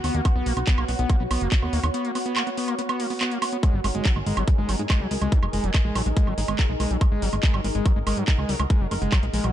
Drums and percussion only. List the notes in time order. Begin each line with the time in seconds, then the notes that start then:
0.04 open hi-hat, high woodblock
0.15 closed hi-hat
0.25 kick, closed hi-hat, high woodblock
0.46 open hi-hat
0.57 closed hi-hat, high woodblock
0.67 kick, clap, closed hi-hat
0.78 high woodblock
0.88 open hi-hat
0.99 closed hi-hat
1.10 kick, closed hi-hat, high woodblock
1.31 open hi-hat, high woodblock
1.41 closed hi-hat
1.52 kick, clap, closed hi-hat
1.62 high woodblock
1.73 open hi-hat
1.84 closed hi-hat, high woodblock
1.94 closed hi-hat
2.05 closed hi-hat
2.15 open hi-hat, high woodblock
2.26 closed hi-hat
2.36 clap, closed hi-hat, high woodblock
2.47 closed hi-hat
2.57 open hi-hat
2.68 closed hi-hat, high woodblock
2.79 closed hi-hat
2.89 closed hi-hat, high woodblock
3.00 open hi-hat
3.10 open hi-hat
3.21 clap, closed hi-hat, high woodblock
3.31 closed hi-hat
3.42 open hi-hat, high woodblock
3.53 closed hi-hat
3.63 kick, closed hi-hat, high woodblock
3.84 open hi-hat, high woodblock
3.95 closed hi-hat
4.05 kick, clap, closed hi-hat
4.16 high woodblock
4.26 open hi-hat
4.37 closed hi-hat, high woodblock
4.48 kick, closed hi-hat
4.69 open hi-hat, high woodblock
4.79 closed hi-hat
4.90 kick, clap, closed hi-hat, high woodblock
5.11 open hi-hat
5.22 closed hi-hat, high woodblock
5.32 kick, closed hi-hat
5.43 high woodblock
5.53 open hi-hat
5.64 closed hi-hat
5.74 kick, clap, closed hi-hat, high woodblock
5.95 open hi-hat, high woodblock
6.06 closed hi-hat
6.17 kick, closed hi-hat
6.27 high woodblock
6.38 open hi-hat
6.48 closed hi-hat, high woodblock
6.59 kick, clap, closed hi-hat
6.80 open hi-hat, high woodblock
6.91 closed hi-hat
7.01 kick, closed hi-hat, high woodblock
7.22 open hi-hat
7.33 closed hi-hat, high woodblock
7.43 kick, clap, closed hi-hat
7.54 high woodblock
7.64 open hi-hat
7.75 closed hi-hat
7.86 kick, closed hi-hat, high woodblock
8.07 open hi-hat, high woodblock
8.17 closed hi-hat
8.28 kick, clap, closed hi-hat
8.38 high woodblock
8.49 open hi-hat
8.60 high woodblock
8.70 kick, closed hi-hat
8.91 open hi-hat, high woodblock
9.02 closed hi-hat
9.12 kick, clap, closed hi-hat, high woodblock
9.23 closed hi-hat
9.34 open hi-hat
9.44 closed hi-hat, high woodblock